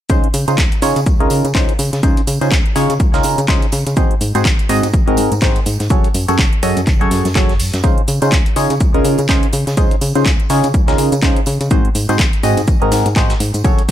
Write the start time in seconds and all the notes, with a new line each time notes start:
0.10 C#2 C#3 C#4 D#4 F4 G#4 C5, kick, closed hi-hat, tambourine, shaker
0.24 closed hi-hat
0.34 C#3, open hi-hat, tambourine, shaker
0.48 C#3 C#4 D#4 F4 G#4 C5, closed hi-hat, tambourine
0.58 C#2, kick, snare, clap, closed hi-hat, tambourine, shaker
0.72 closed hi-hat
0.82 C#3 C#4 D#4 F4 G#4 C#5, open hi-hat, tambourine, shaker
0.96 C#3, closed hi-hat, tambourine
1.06 C#2, kick, closed hi-hat, shaker
1.20 C#3 C#4 D#4 F4 G#4 A#4, closed hi-hat
1.30 C#3, open hi-hat, tambourine, shaker
1.45 C#3, closed hi-hat, tambourine
1.55 C#2 C#3 C#4 D#4 F4 G#4 C5, kick, snare, clap, closed hi-hat, tambourine, shaker
1.69 closed hi-hat
1.79 C#3, open hi-hat, tambourine, shaker
1.93 C#3, snare, closed hi-hat, tambourine
2.03 C#2 C#3 C#4 D#4 F4 G#4 C5, kick, closed hi-hat, tambourine, shaker
2.17 closed hi-hat
2.27 C#3, open hi-hat, tambourine, shaker
2.41 C#3 C#4 D#4 F4 G#4 C5, closed hi-hat, tambourine
2.51 C#2, kick, snare, clap, closed hi-hat, tambourine, shaker
2.66 closed hi-hat
2.76 C#3 C#4 D#4 F4 G#4 C#5, snare, open hi-hat, tambourine, shaker
2.90 C#3, closed hi-hat, tambourine
2.99 C#2, kick, closed hi-hat, tambourine, shaker
3.14 C#3 C#4 D#4 F4 G#4 A#4, snare, closed hi-hat, shaker
3.23 C#3, closed hi-hat, open hi-hat, tambourine
3.38 C#3, closed hi-hat, tambourine, shaker
3.48 C#2 C#3 C#4 D#4 F4 G#4 C5, kick, snare, clap, closed hi-hat, shaker
3.62 closed hi-hat
3.72 C#3, open hi-hat, tambourine, shaker
3.86 C#3, closed hi-hat, tambourine
3.97 G#1 G#2 C4 D#4 F#4 G#4 C5, kick, closed hi-hat, shaker
4.11 closed hi-hat
4.21 G#2, open hi-hat, tambourine, shaker
4.35 G#2 C4 D#4 F#4 G#4 C5, closed hi-hat, tambourine
4.45 G#1, kick, snare, clap, closed hi-hat, tambourine, shaker
4.59 closed hi-hat
4.69 G#2 C4 D#4 F#4 G#4 D#5, open hi-hat, tambourine, shaker
4.83 G#2, closed hi-hat, tambourine
4.94 G#1, kick, closed hi-hat, shaker
5.08 G#2 C4 D#4 F#4 G#4 A#4, closed hi-hat
5.17 G#2, open hi-hat, tambourine, shaker
5.32 G#2, closed hi-hat, tambourine
5.41 G#1 G#2 C4 D#4 F#4 G#4 C5, kick, snare, clap, closed hi-hat, tambourine, shaker
5.56 closed hi-hat
5.66 G#2, open hi-hat, tambourine, shaker
5.80 G#2, snare, closed hi-hat, tambourine
5.89 F#1 F#3 C#4 F#4 G#4 A4 C#5, kick, closed hi-hat, tambourine, shaker
6.04 closed hi-hat
6.14 F#2, open hi-hat, tambourine, shaker
6.28 F#2 F#3 C#4 F#4 G#4 A4 C#5, closed hi-hat, tambourine
6.39 F#1, kick, snare, clap, closed hi-hat, tambourine, shaker
6.53 closed hi-hat
6.63 F#2 F#3 C#4 F#4 G#4 A4 D#5, open hi-hat, tambourine, shaker
6.77 F#2, closed hi-hat, tambourine
6.87 F#1, kick, clap, closed hi-hat, tambourine, shaker
7.01 F#3 C#4 F#4 G#4 A4 C#5, closed hi-hat
7.11 F#2, snare, open hi-hat, tambourine, shaker
7.25 F#2, snare, closed hi-hat, tambourine
7.35 F#1 F#3 C#4 F#4 G#4 A4 C#5, kick, snare, clap, closed hi-hat, shaker
7.49 snare, closed hi-hat
7.60 F#2, open hi-hat, tambourine
7.73 F#2, snare, closed hi-hat, tambourine, shaker
7.83 C#2 C#3 C#4 D#4 F4 G#4 C5, kick, closed hi-hat, tambourine, shaker
7.98 closed hi-hat
8.08 C#3, open hi-hat, tambourine, shaker
8.22 C#3 C#4 D#4 F4 G#4 C5, closed hi-hat, tambourine
8.32 C#2, kick, snare, clap, closed hi-hat, shaker
8.46 closed hi-hat
8.56 C#3 C#4 D#4 F4 G#4 C#5, open hi-hat, tambourine, shaker
8.70 C#3, closed hi-hat, tambourine
8.80 C#2, kick, closed hi-hat, shaker
8.94 C#3 C#4 D#4 F4 G#4 A#4, closed hi-hat
9.05 C#3, open hi-hat, tambourine, shaker
9.18 C#3, closed hi-hat, tambourine
9.29 C#2 C#3 C#4 D#4 F4 G#4 C5, kick, snare, clap, closed hi-hat, tambourine, shaker
9.43 closed hi-hat
9.53 C#3, open hi-hat, tambourine, shaker
9.67 C#3, snare, closed hi-hat, tambourine
9.77 C#2 C#3 C#4 D#4 F4 G#4 C5, kick, closed hi-hat, shaker
9.91 closed hi-hat
10.01 C#3, open hi-hat, tambourine, shaker
10.15 C#3 C#4 D#4 F4 G#4 C5, closed hi-hat, tambourine
10.25 C#2, kick, snare, clap, closed hi-hat, tambourine, shaker
10.40 closed hi-hat
10.50 C#3 C#4 D#4 F4 G#4 C#5, snare, open hi-hat, tambourine, shaker
10.63 C#3, closed hi-hat, tambourine
10.74 C#2, kick, closed hi-hat, tambourine, shaker
10.88 C#3 C#4 D#4 F4 G#4 A#4, snare, closed hi-hat, shaker
10.98 C#3, closed hi-hat, open hi-hat, tambourine
11.12 C#3, closed hi-hat, tambourine, shaker
11.22 C#2 C#3 C#4 D#4 F4 G#4 C5, kick, snare, clap, closed hi-hat, tambourine, shaker
11.36 closed hi-hat
11.46 C#3, open hi-hat, tambourine, shaker
11.61 C#3, closed hi-hat, tambourine
11.71 G#1 G#2 C4 D#4 F#4 G#4 C5, kick, closed hi-hat, tambourine, shaker
11.85 closed hi-hat
11.95 G#2, open hi-hat, tambourine, shaker
12.09 G#2 C4 D#4 F#4 G#4 C5, closed hi-hat, tambourine
12.19 G#1, kick, snare, clap, closed hi-hat, shaker
12.33 closed hi-hat
12.43 G#2 C4 D#4 F#4 G#4 D#5, open hi-hat, tambourine, shaker
12.57 G#2, closed hi-hat, tambourine
12.68 G#1, kick, closed hi-hat, tambourine, shaker
12.82 G#2 C4 D#4 F#4 G#4 A#4, closed hi-hat
12.92 G#2, snare, open hi-hat, tambourine, shaker
13.06 G#2, closed hi-hat, tambourine
13.16 G#1 G#2 C4 D#4 F#4 G#4 C5, kick, clap, closed hi-hat, tambourine, shaker
13.30 snare, closed hi-hat, shaker
13.40 G#2, closed hi-hat, open hi-hat, tambourine
13.54 G#2, closed hi-hat, tambourine, shaker
13.64 F#1 F#3 C#4 F#4 G#4 A4 C#5, kick, closed hi-hat, tambourine, shaker
13.78 closed hi-hat